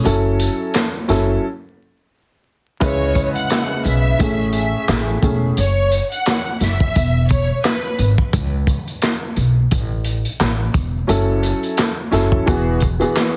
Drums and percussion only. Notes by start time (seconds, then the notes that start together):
0.05 closed hi-hat
0.40 closed hi-hat
0.74 snare, clap, closed hi-hat
1.09 snare, closed hi-hat
2.81 kick, closed hi-hat
3.15 kick, closed hi-hat
3.36 closed hi-hat
3.50 snare, clap, closed hi-hat
3.85 closed hi-hat
4.20 kick, closed hi-hat
4.53 closed hi-hat
4.88 snare, clap, closed hi-hat
5.23 kick, closed hi-hat
5.57 closed hi-hat
5.92 closed hi-hat
6.12 closed hi-hat
6.26 snare, clap, closed hi-hat
6.61 snare, closed hi-hat
6.80 kick
6.96 kick, closed hi-hat
7.29 kick, closed hi-hat
7.64 snare, clap, closed hi-hat
7.99 closed hi-hat
8.18 kick
8.33 kick, closed hi-hat
8.67 kick, closed hi-hat
8.88 closed hi-hat
9.02 snare, clap, closed hi-hat
9.36 closed hi-hat
9.71 kick, closed hi-hat
10.05 closed hi-hat
10.25 closed hi-hat
10.40 snare, clap, closed hi-hat
10.74 kick, closed hi-hat
11.09 closed hi-hat
11.43 closed hi-hat
11.63 closed hi-hat
11.77 snare, clap, closed hi-hat
12.12 snare, closed hi-hat
12.32 kick
12.47 kick, closed hi-hat
12.80 kick, closed hi-hat
13.01 closed hi-hat
13.16 snare, clap, closed hi-hat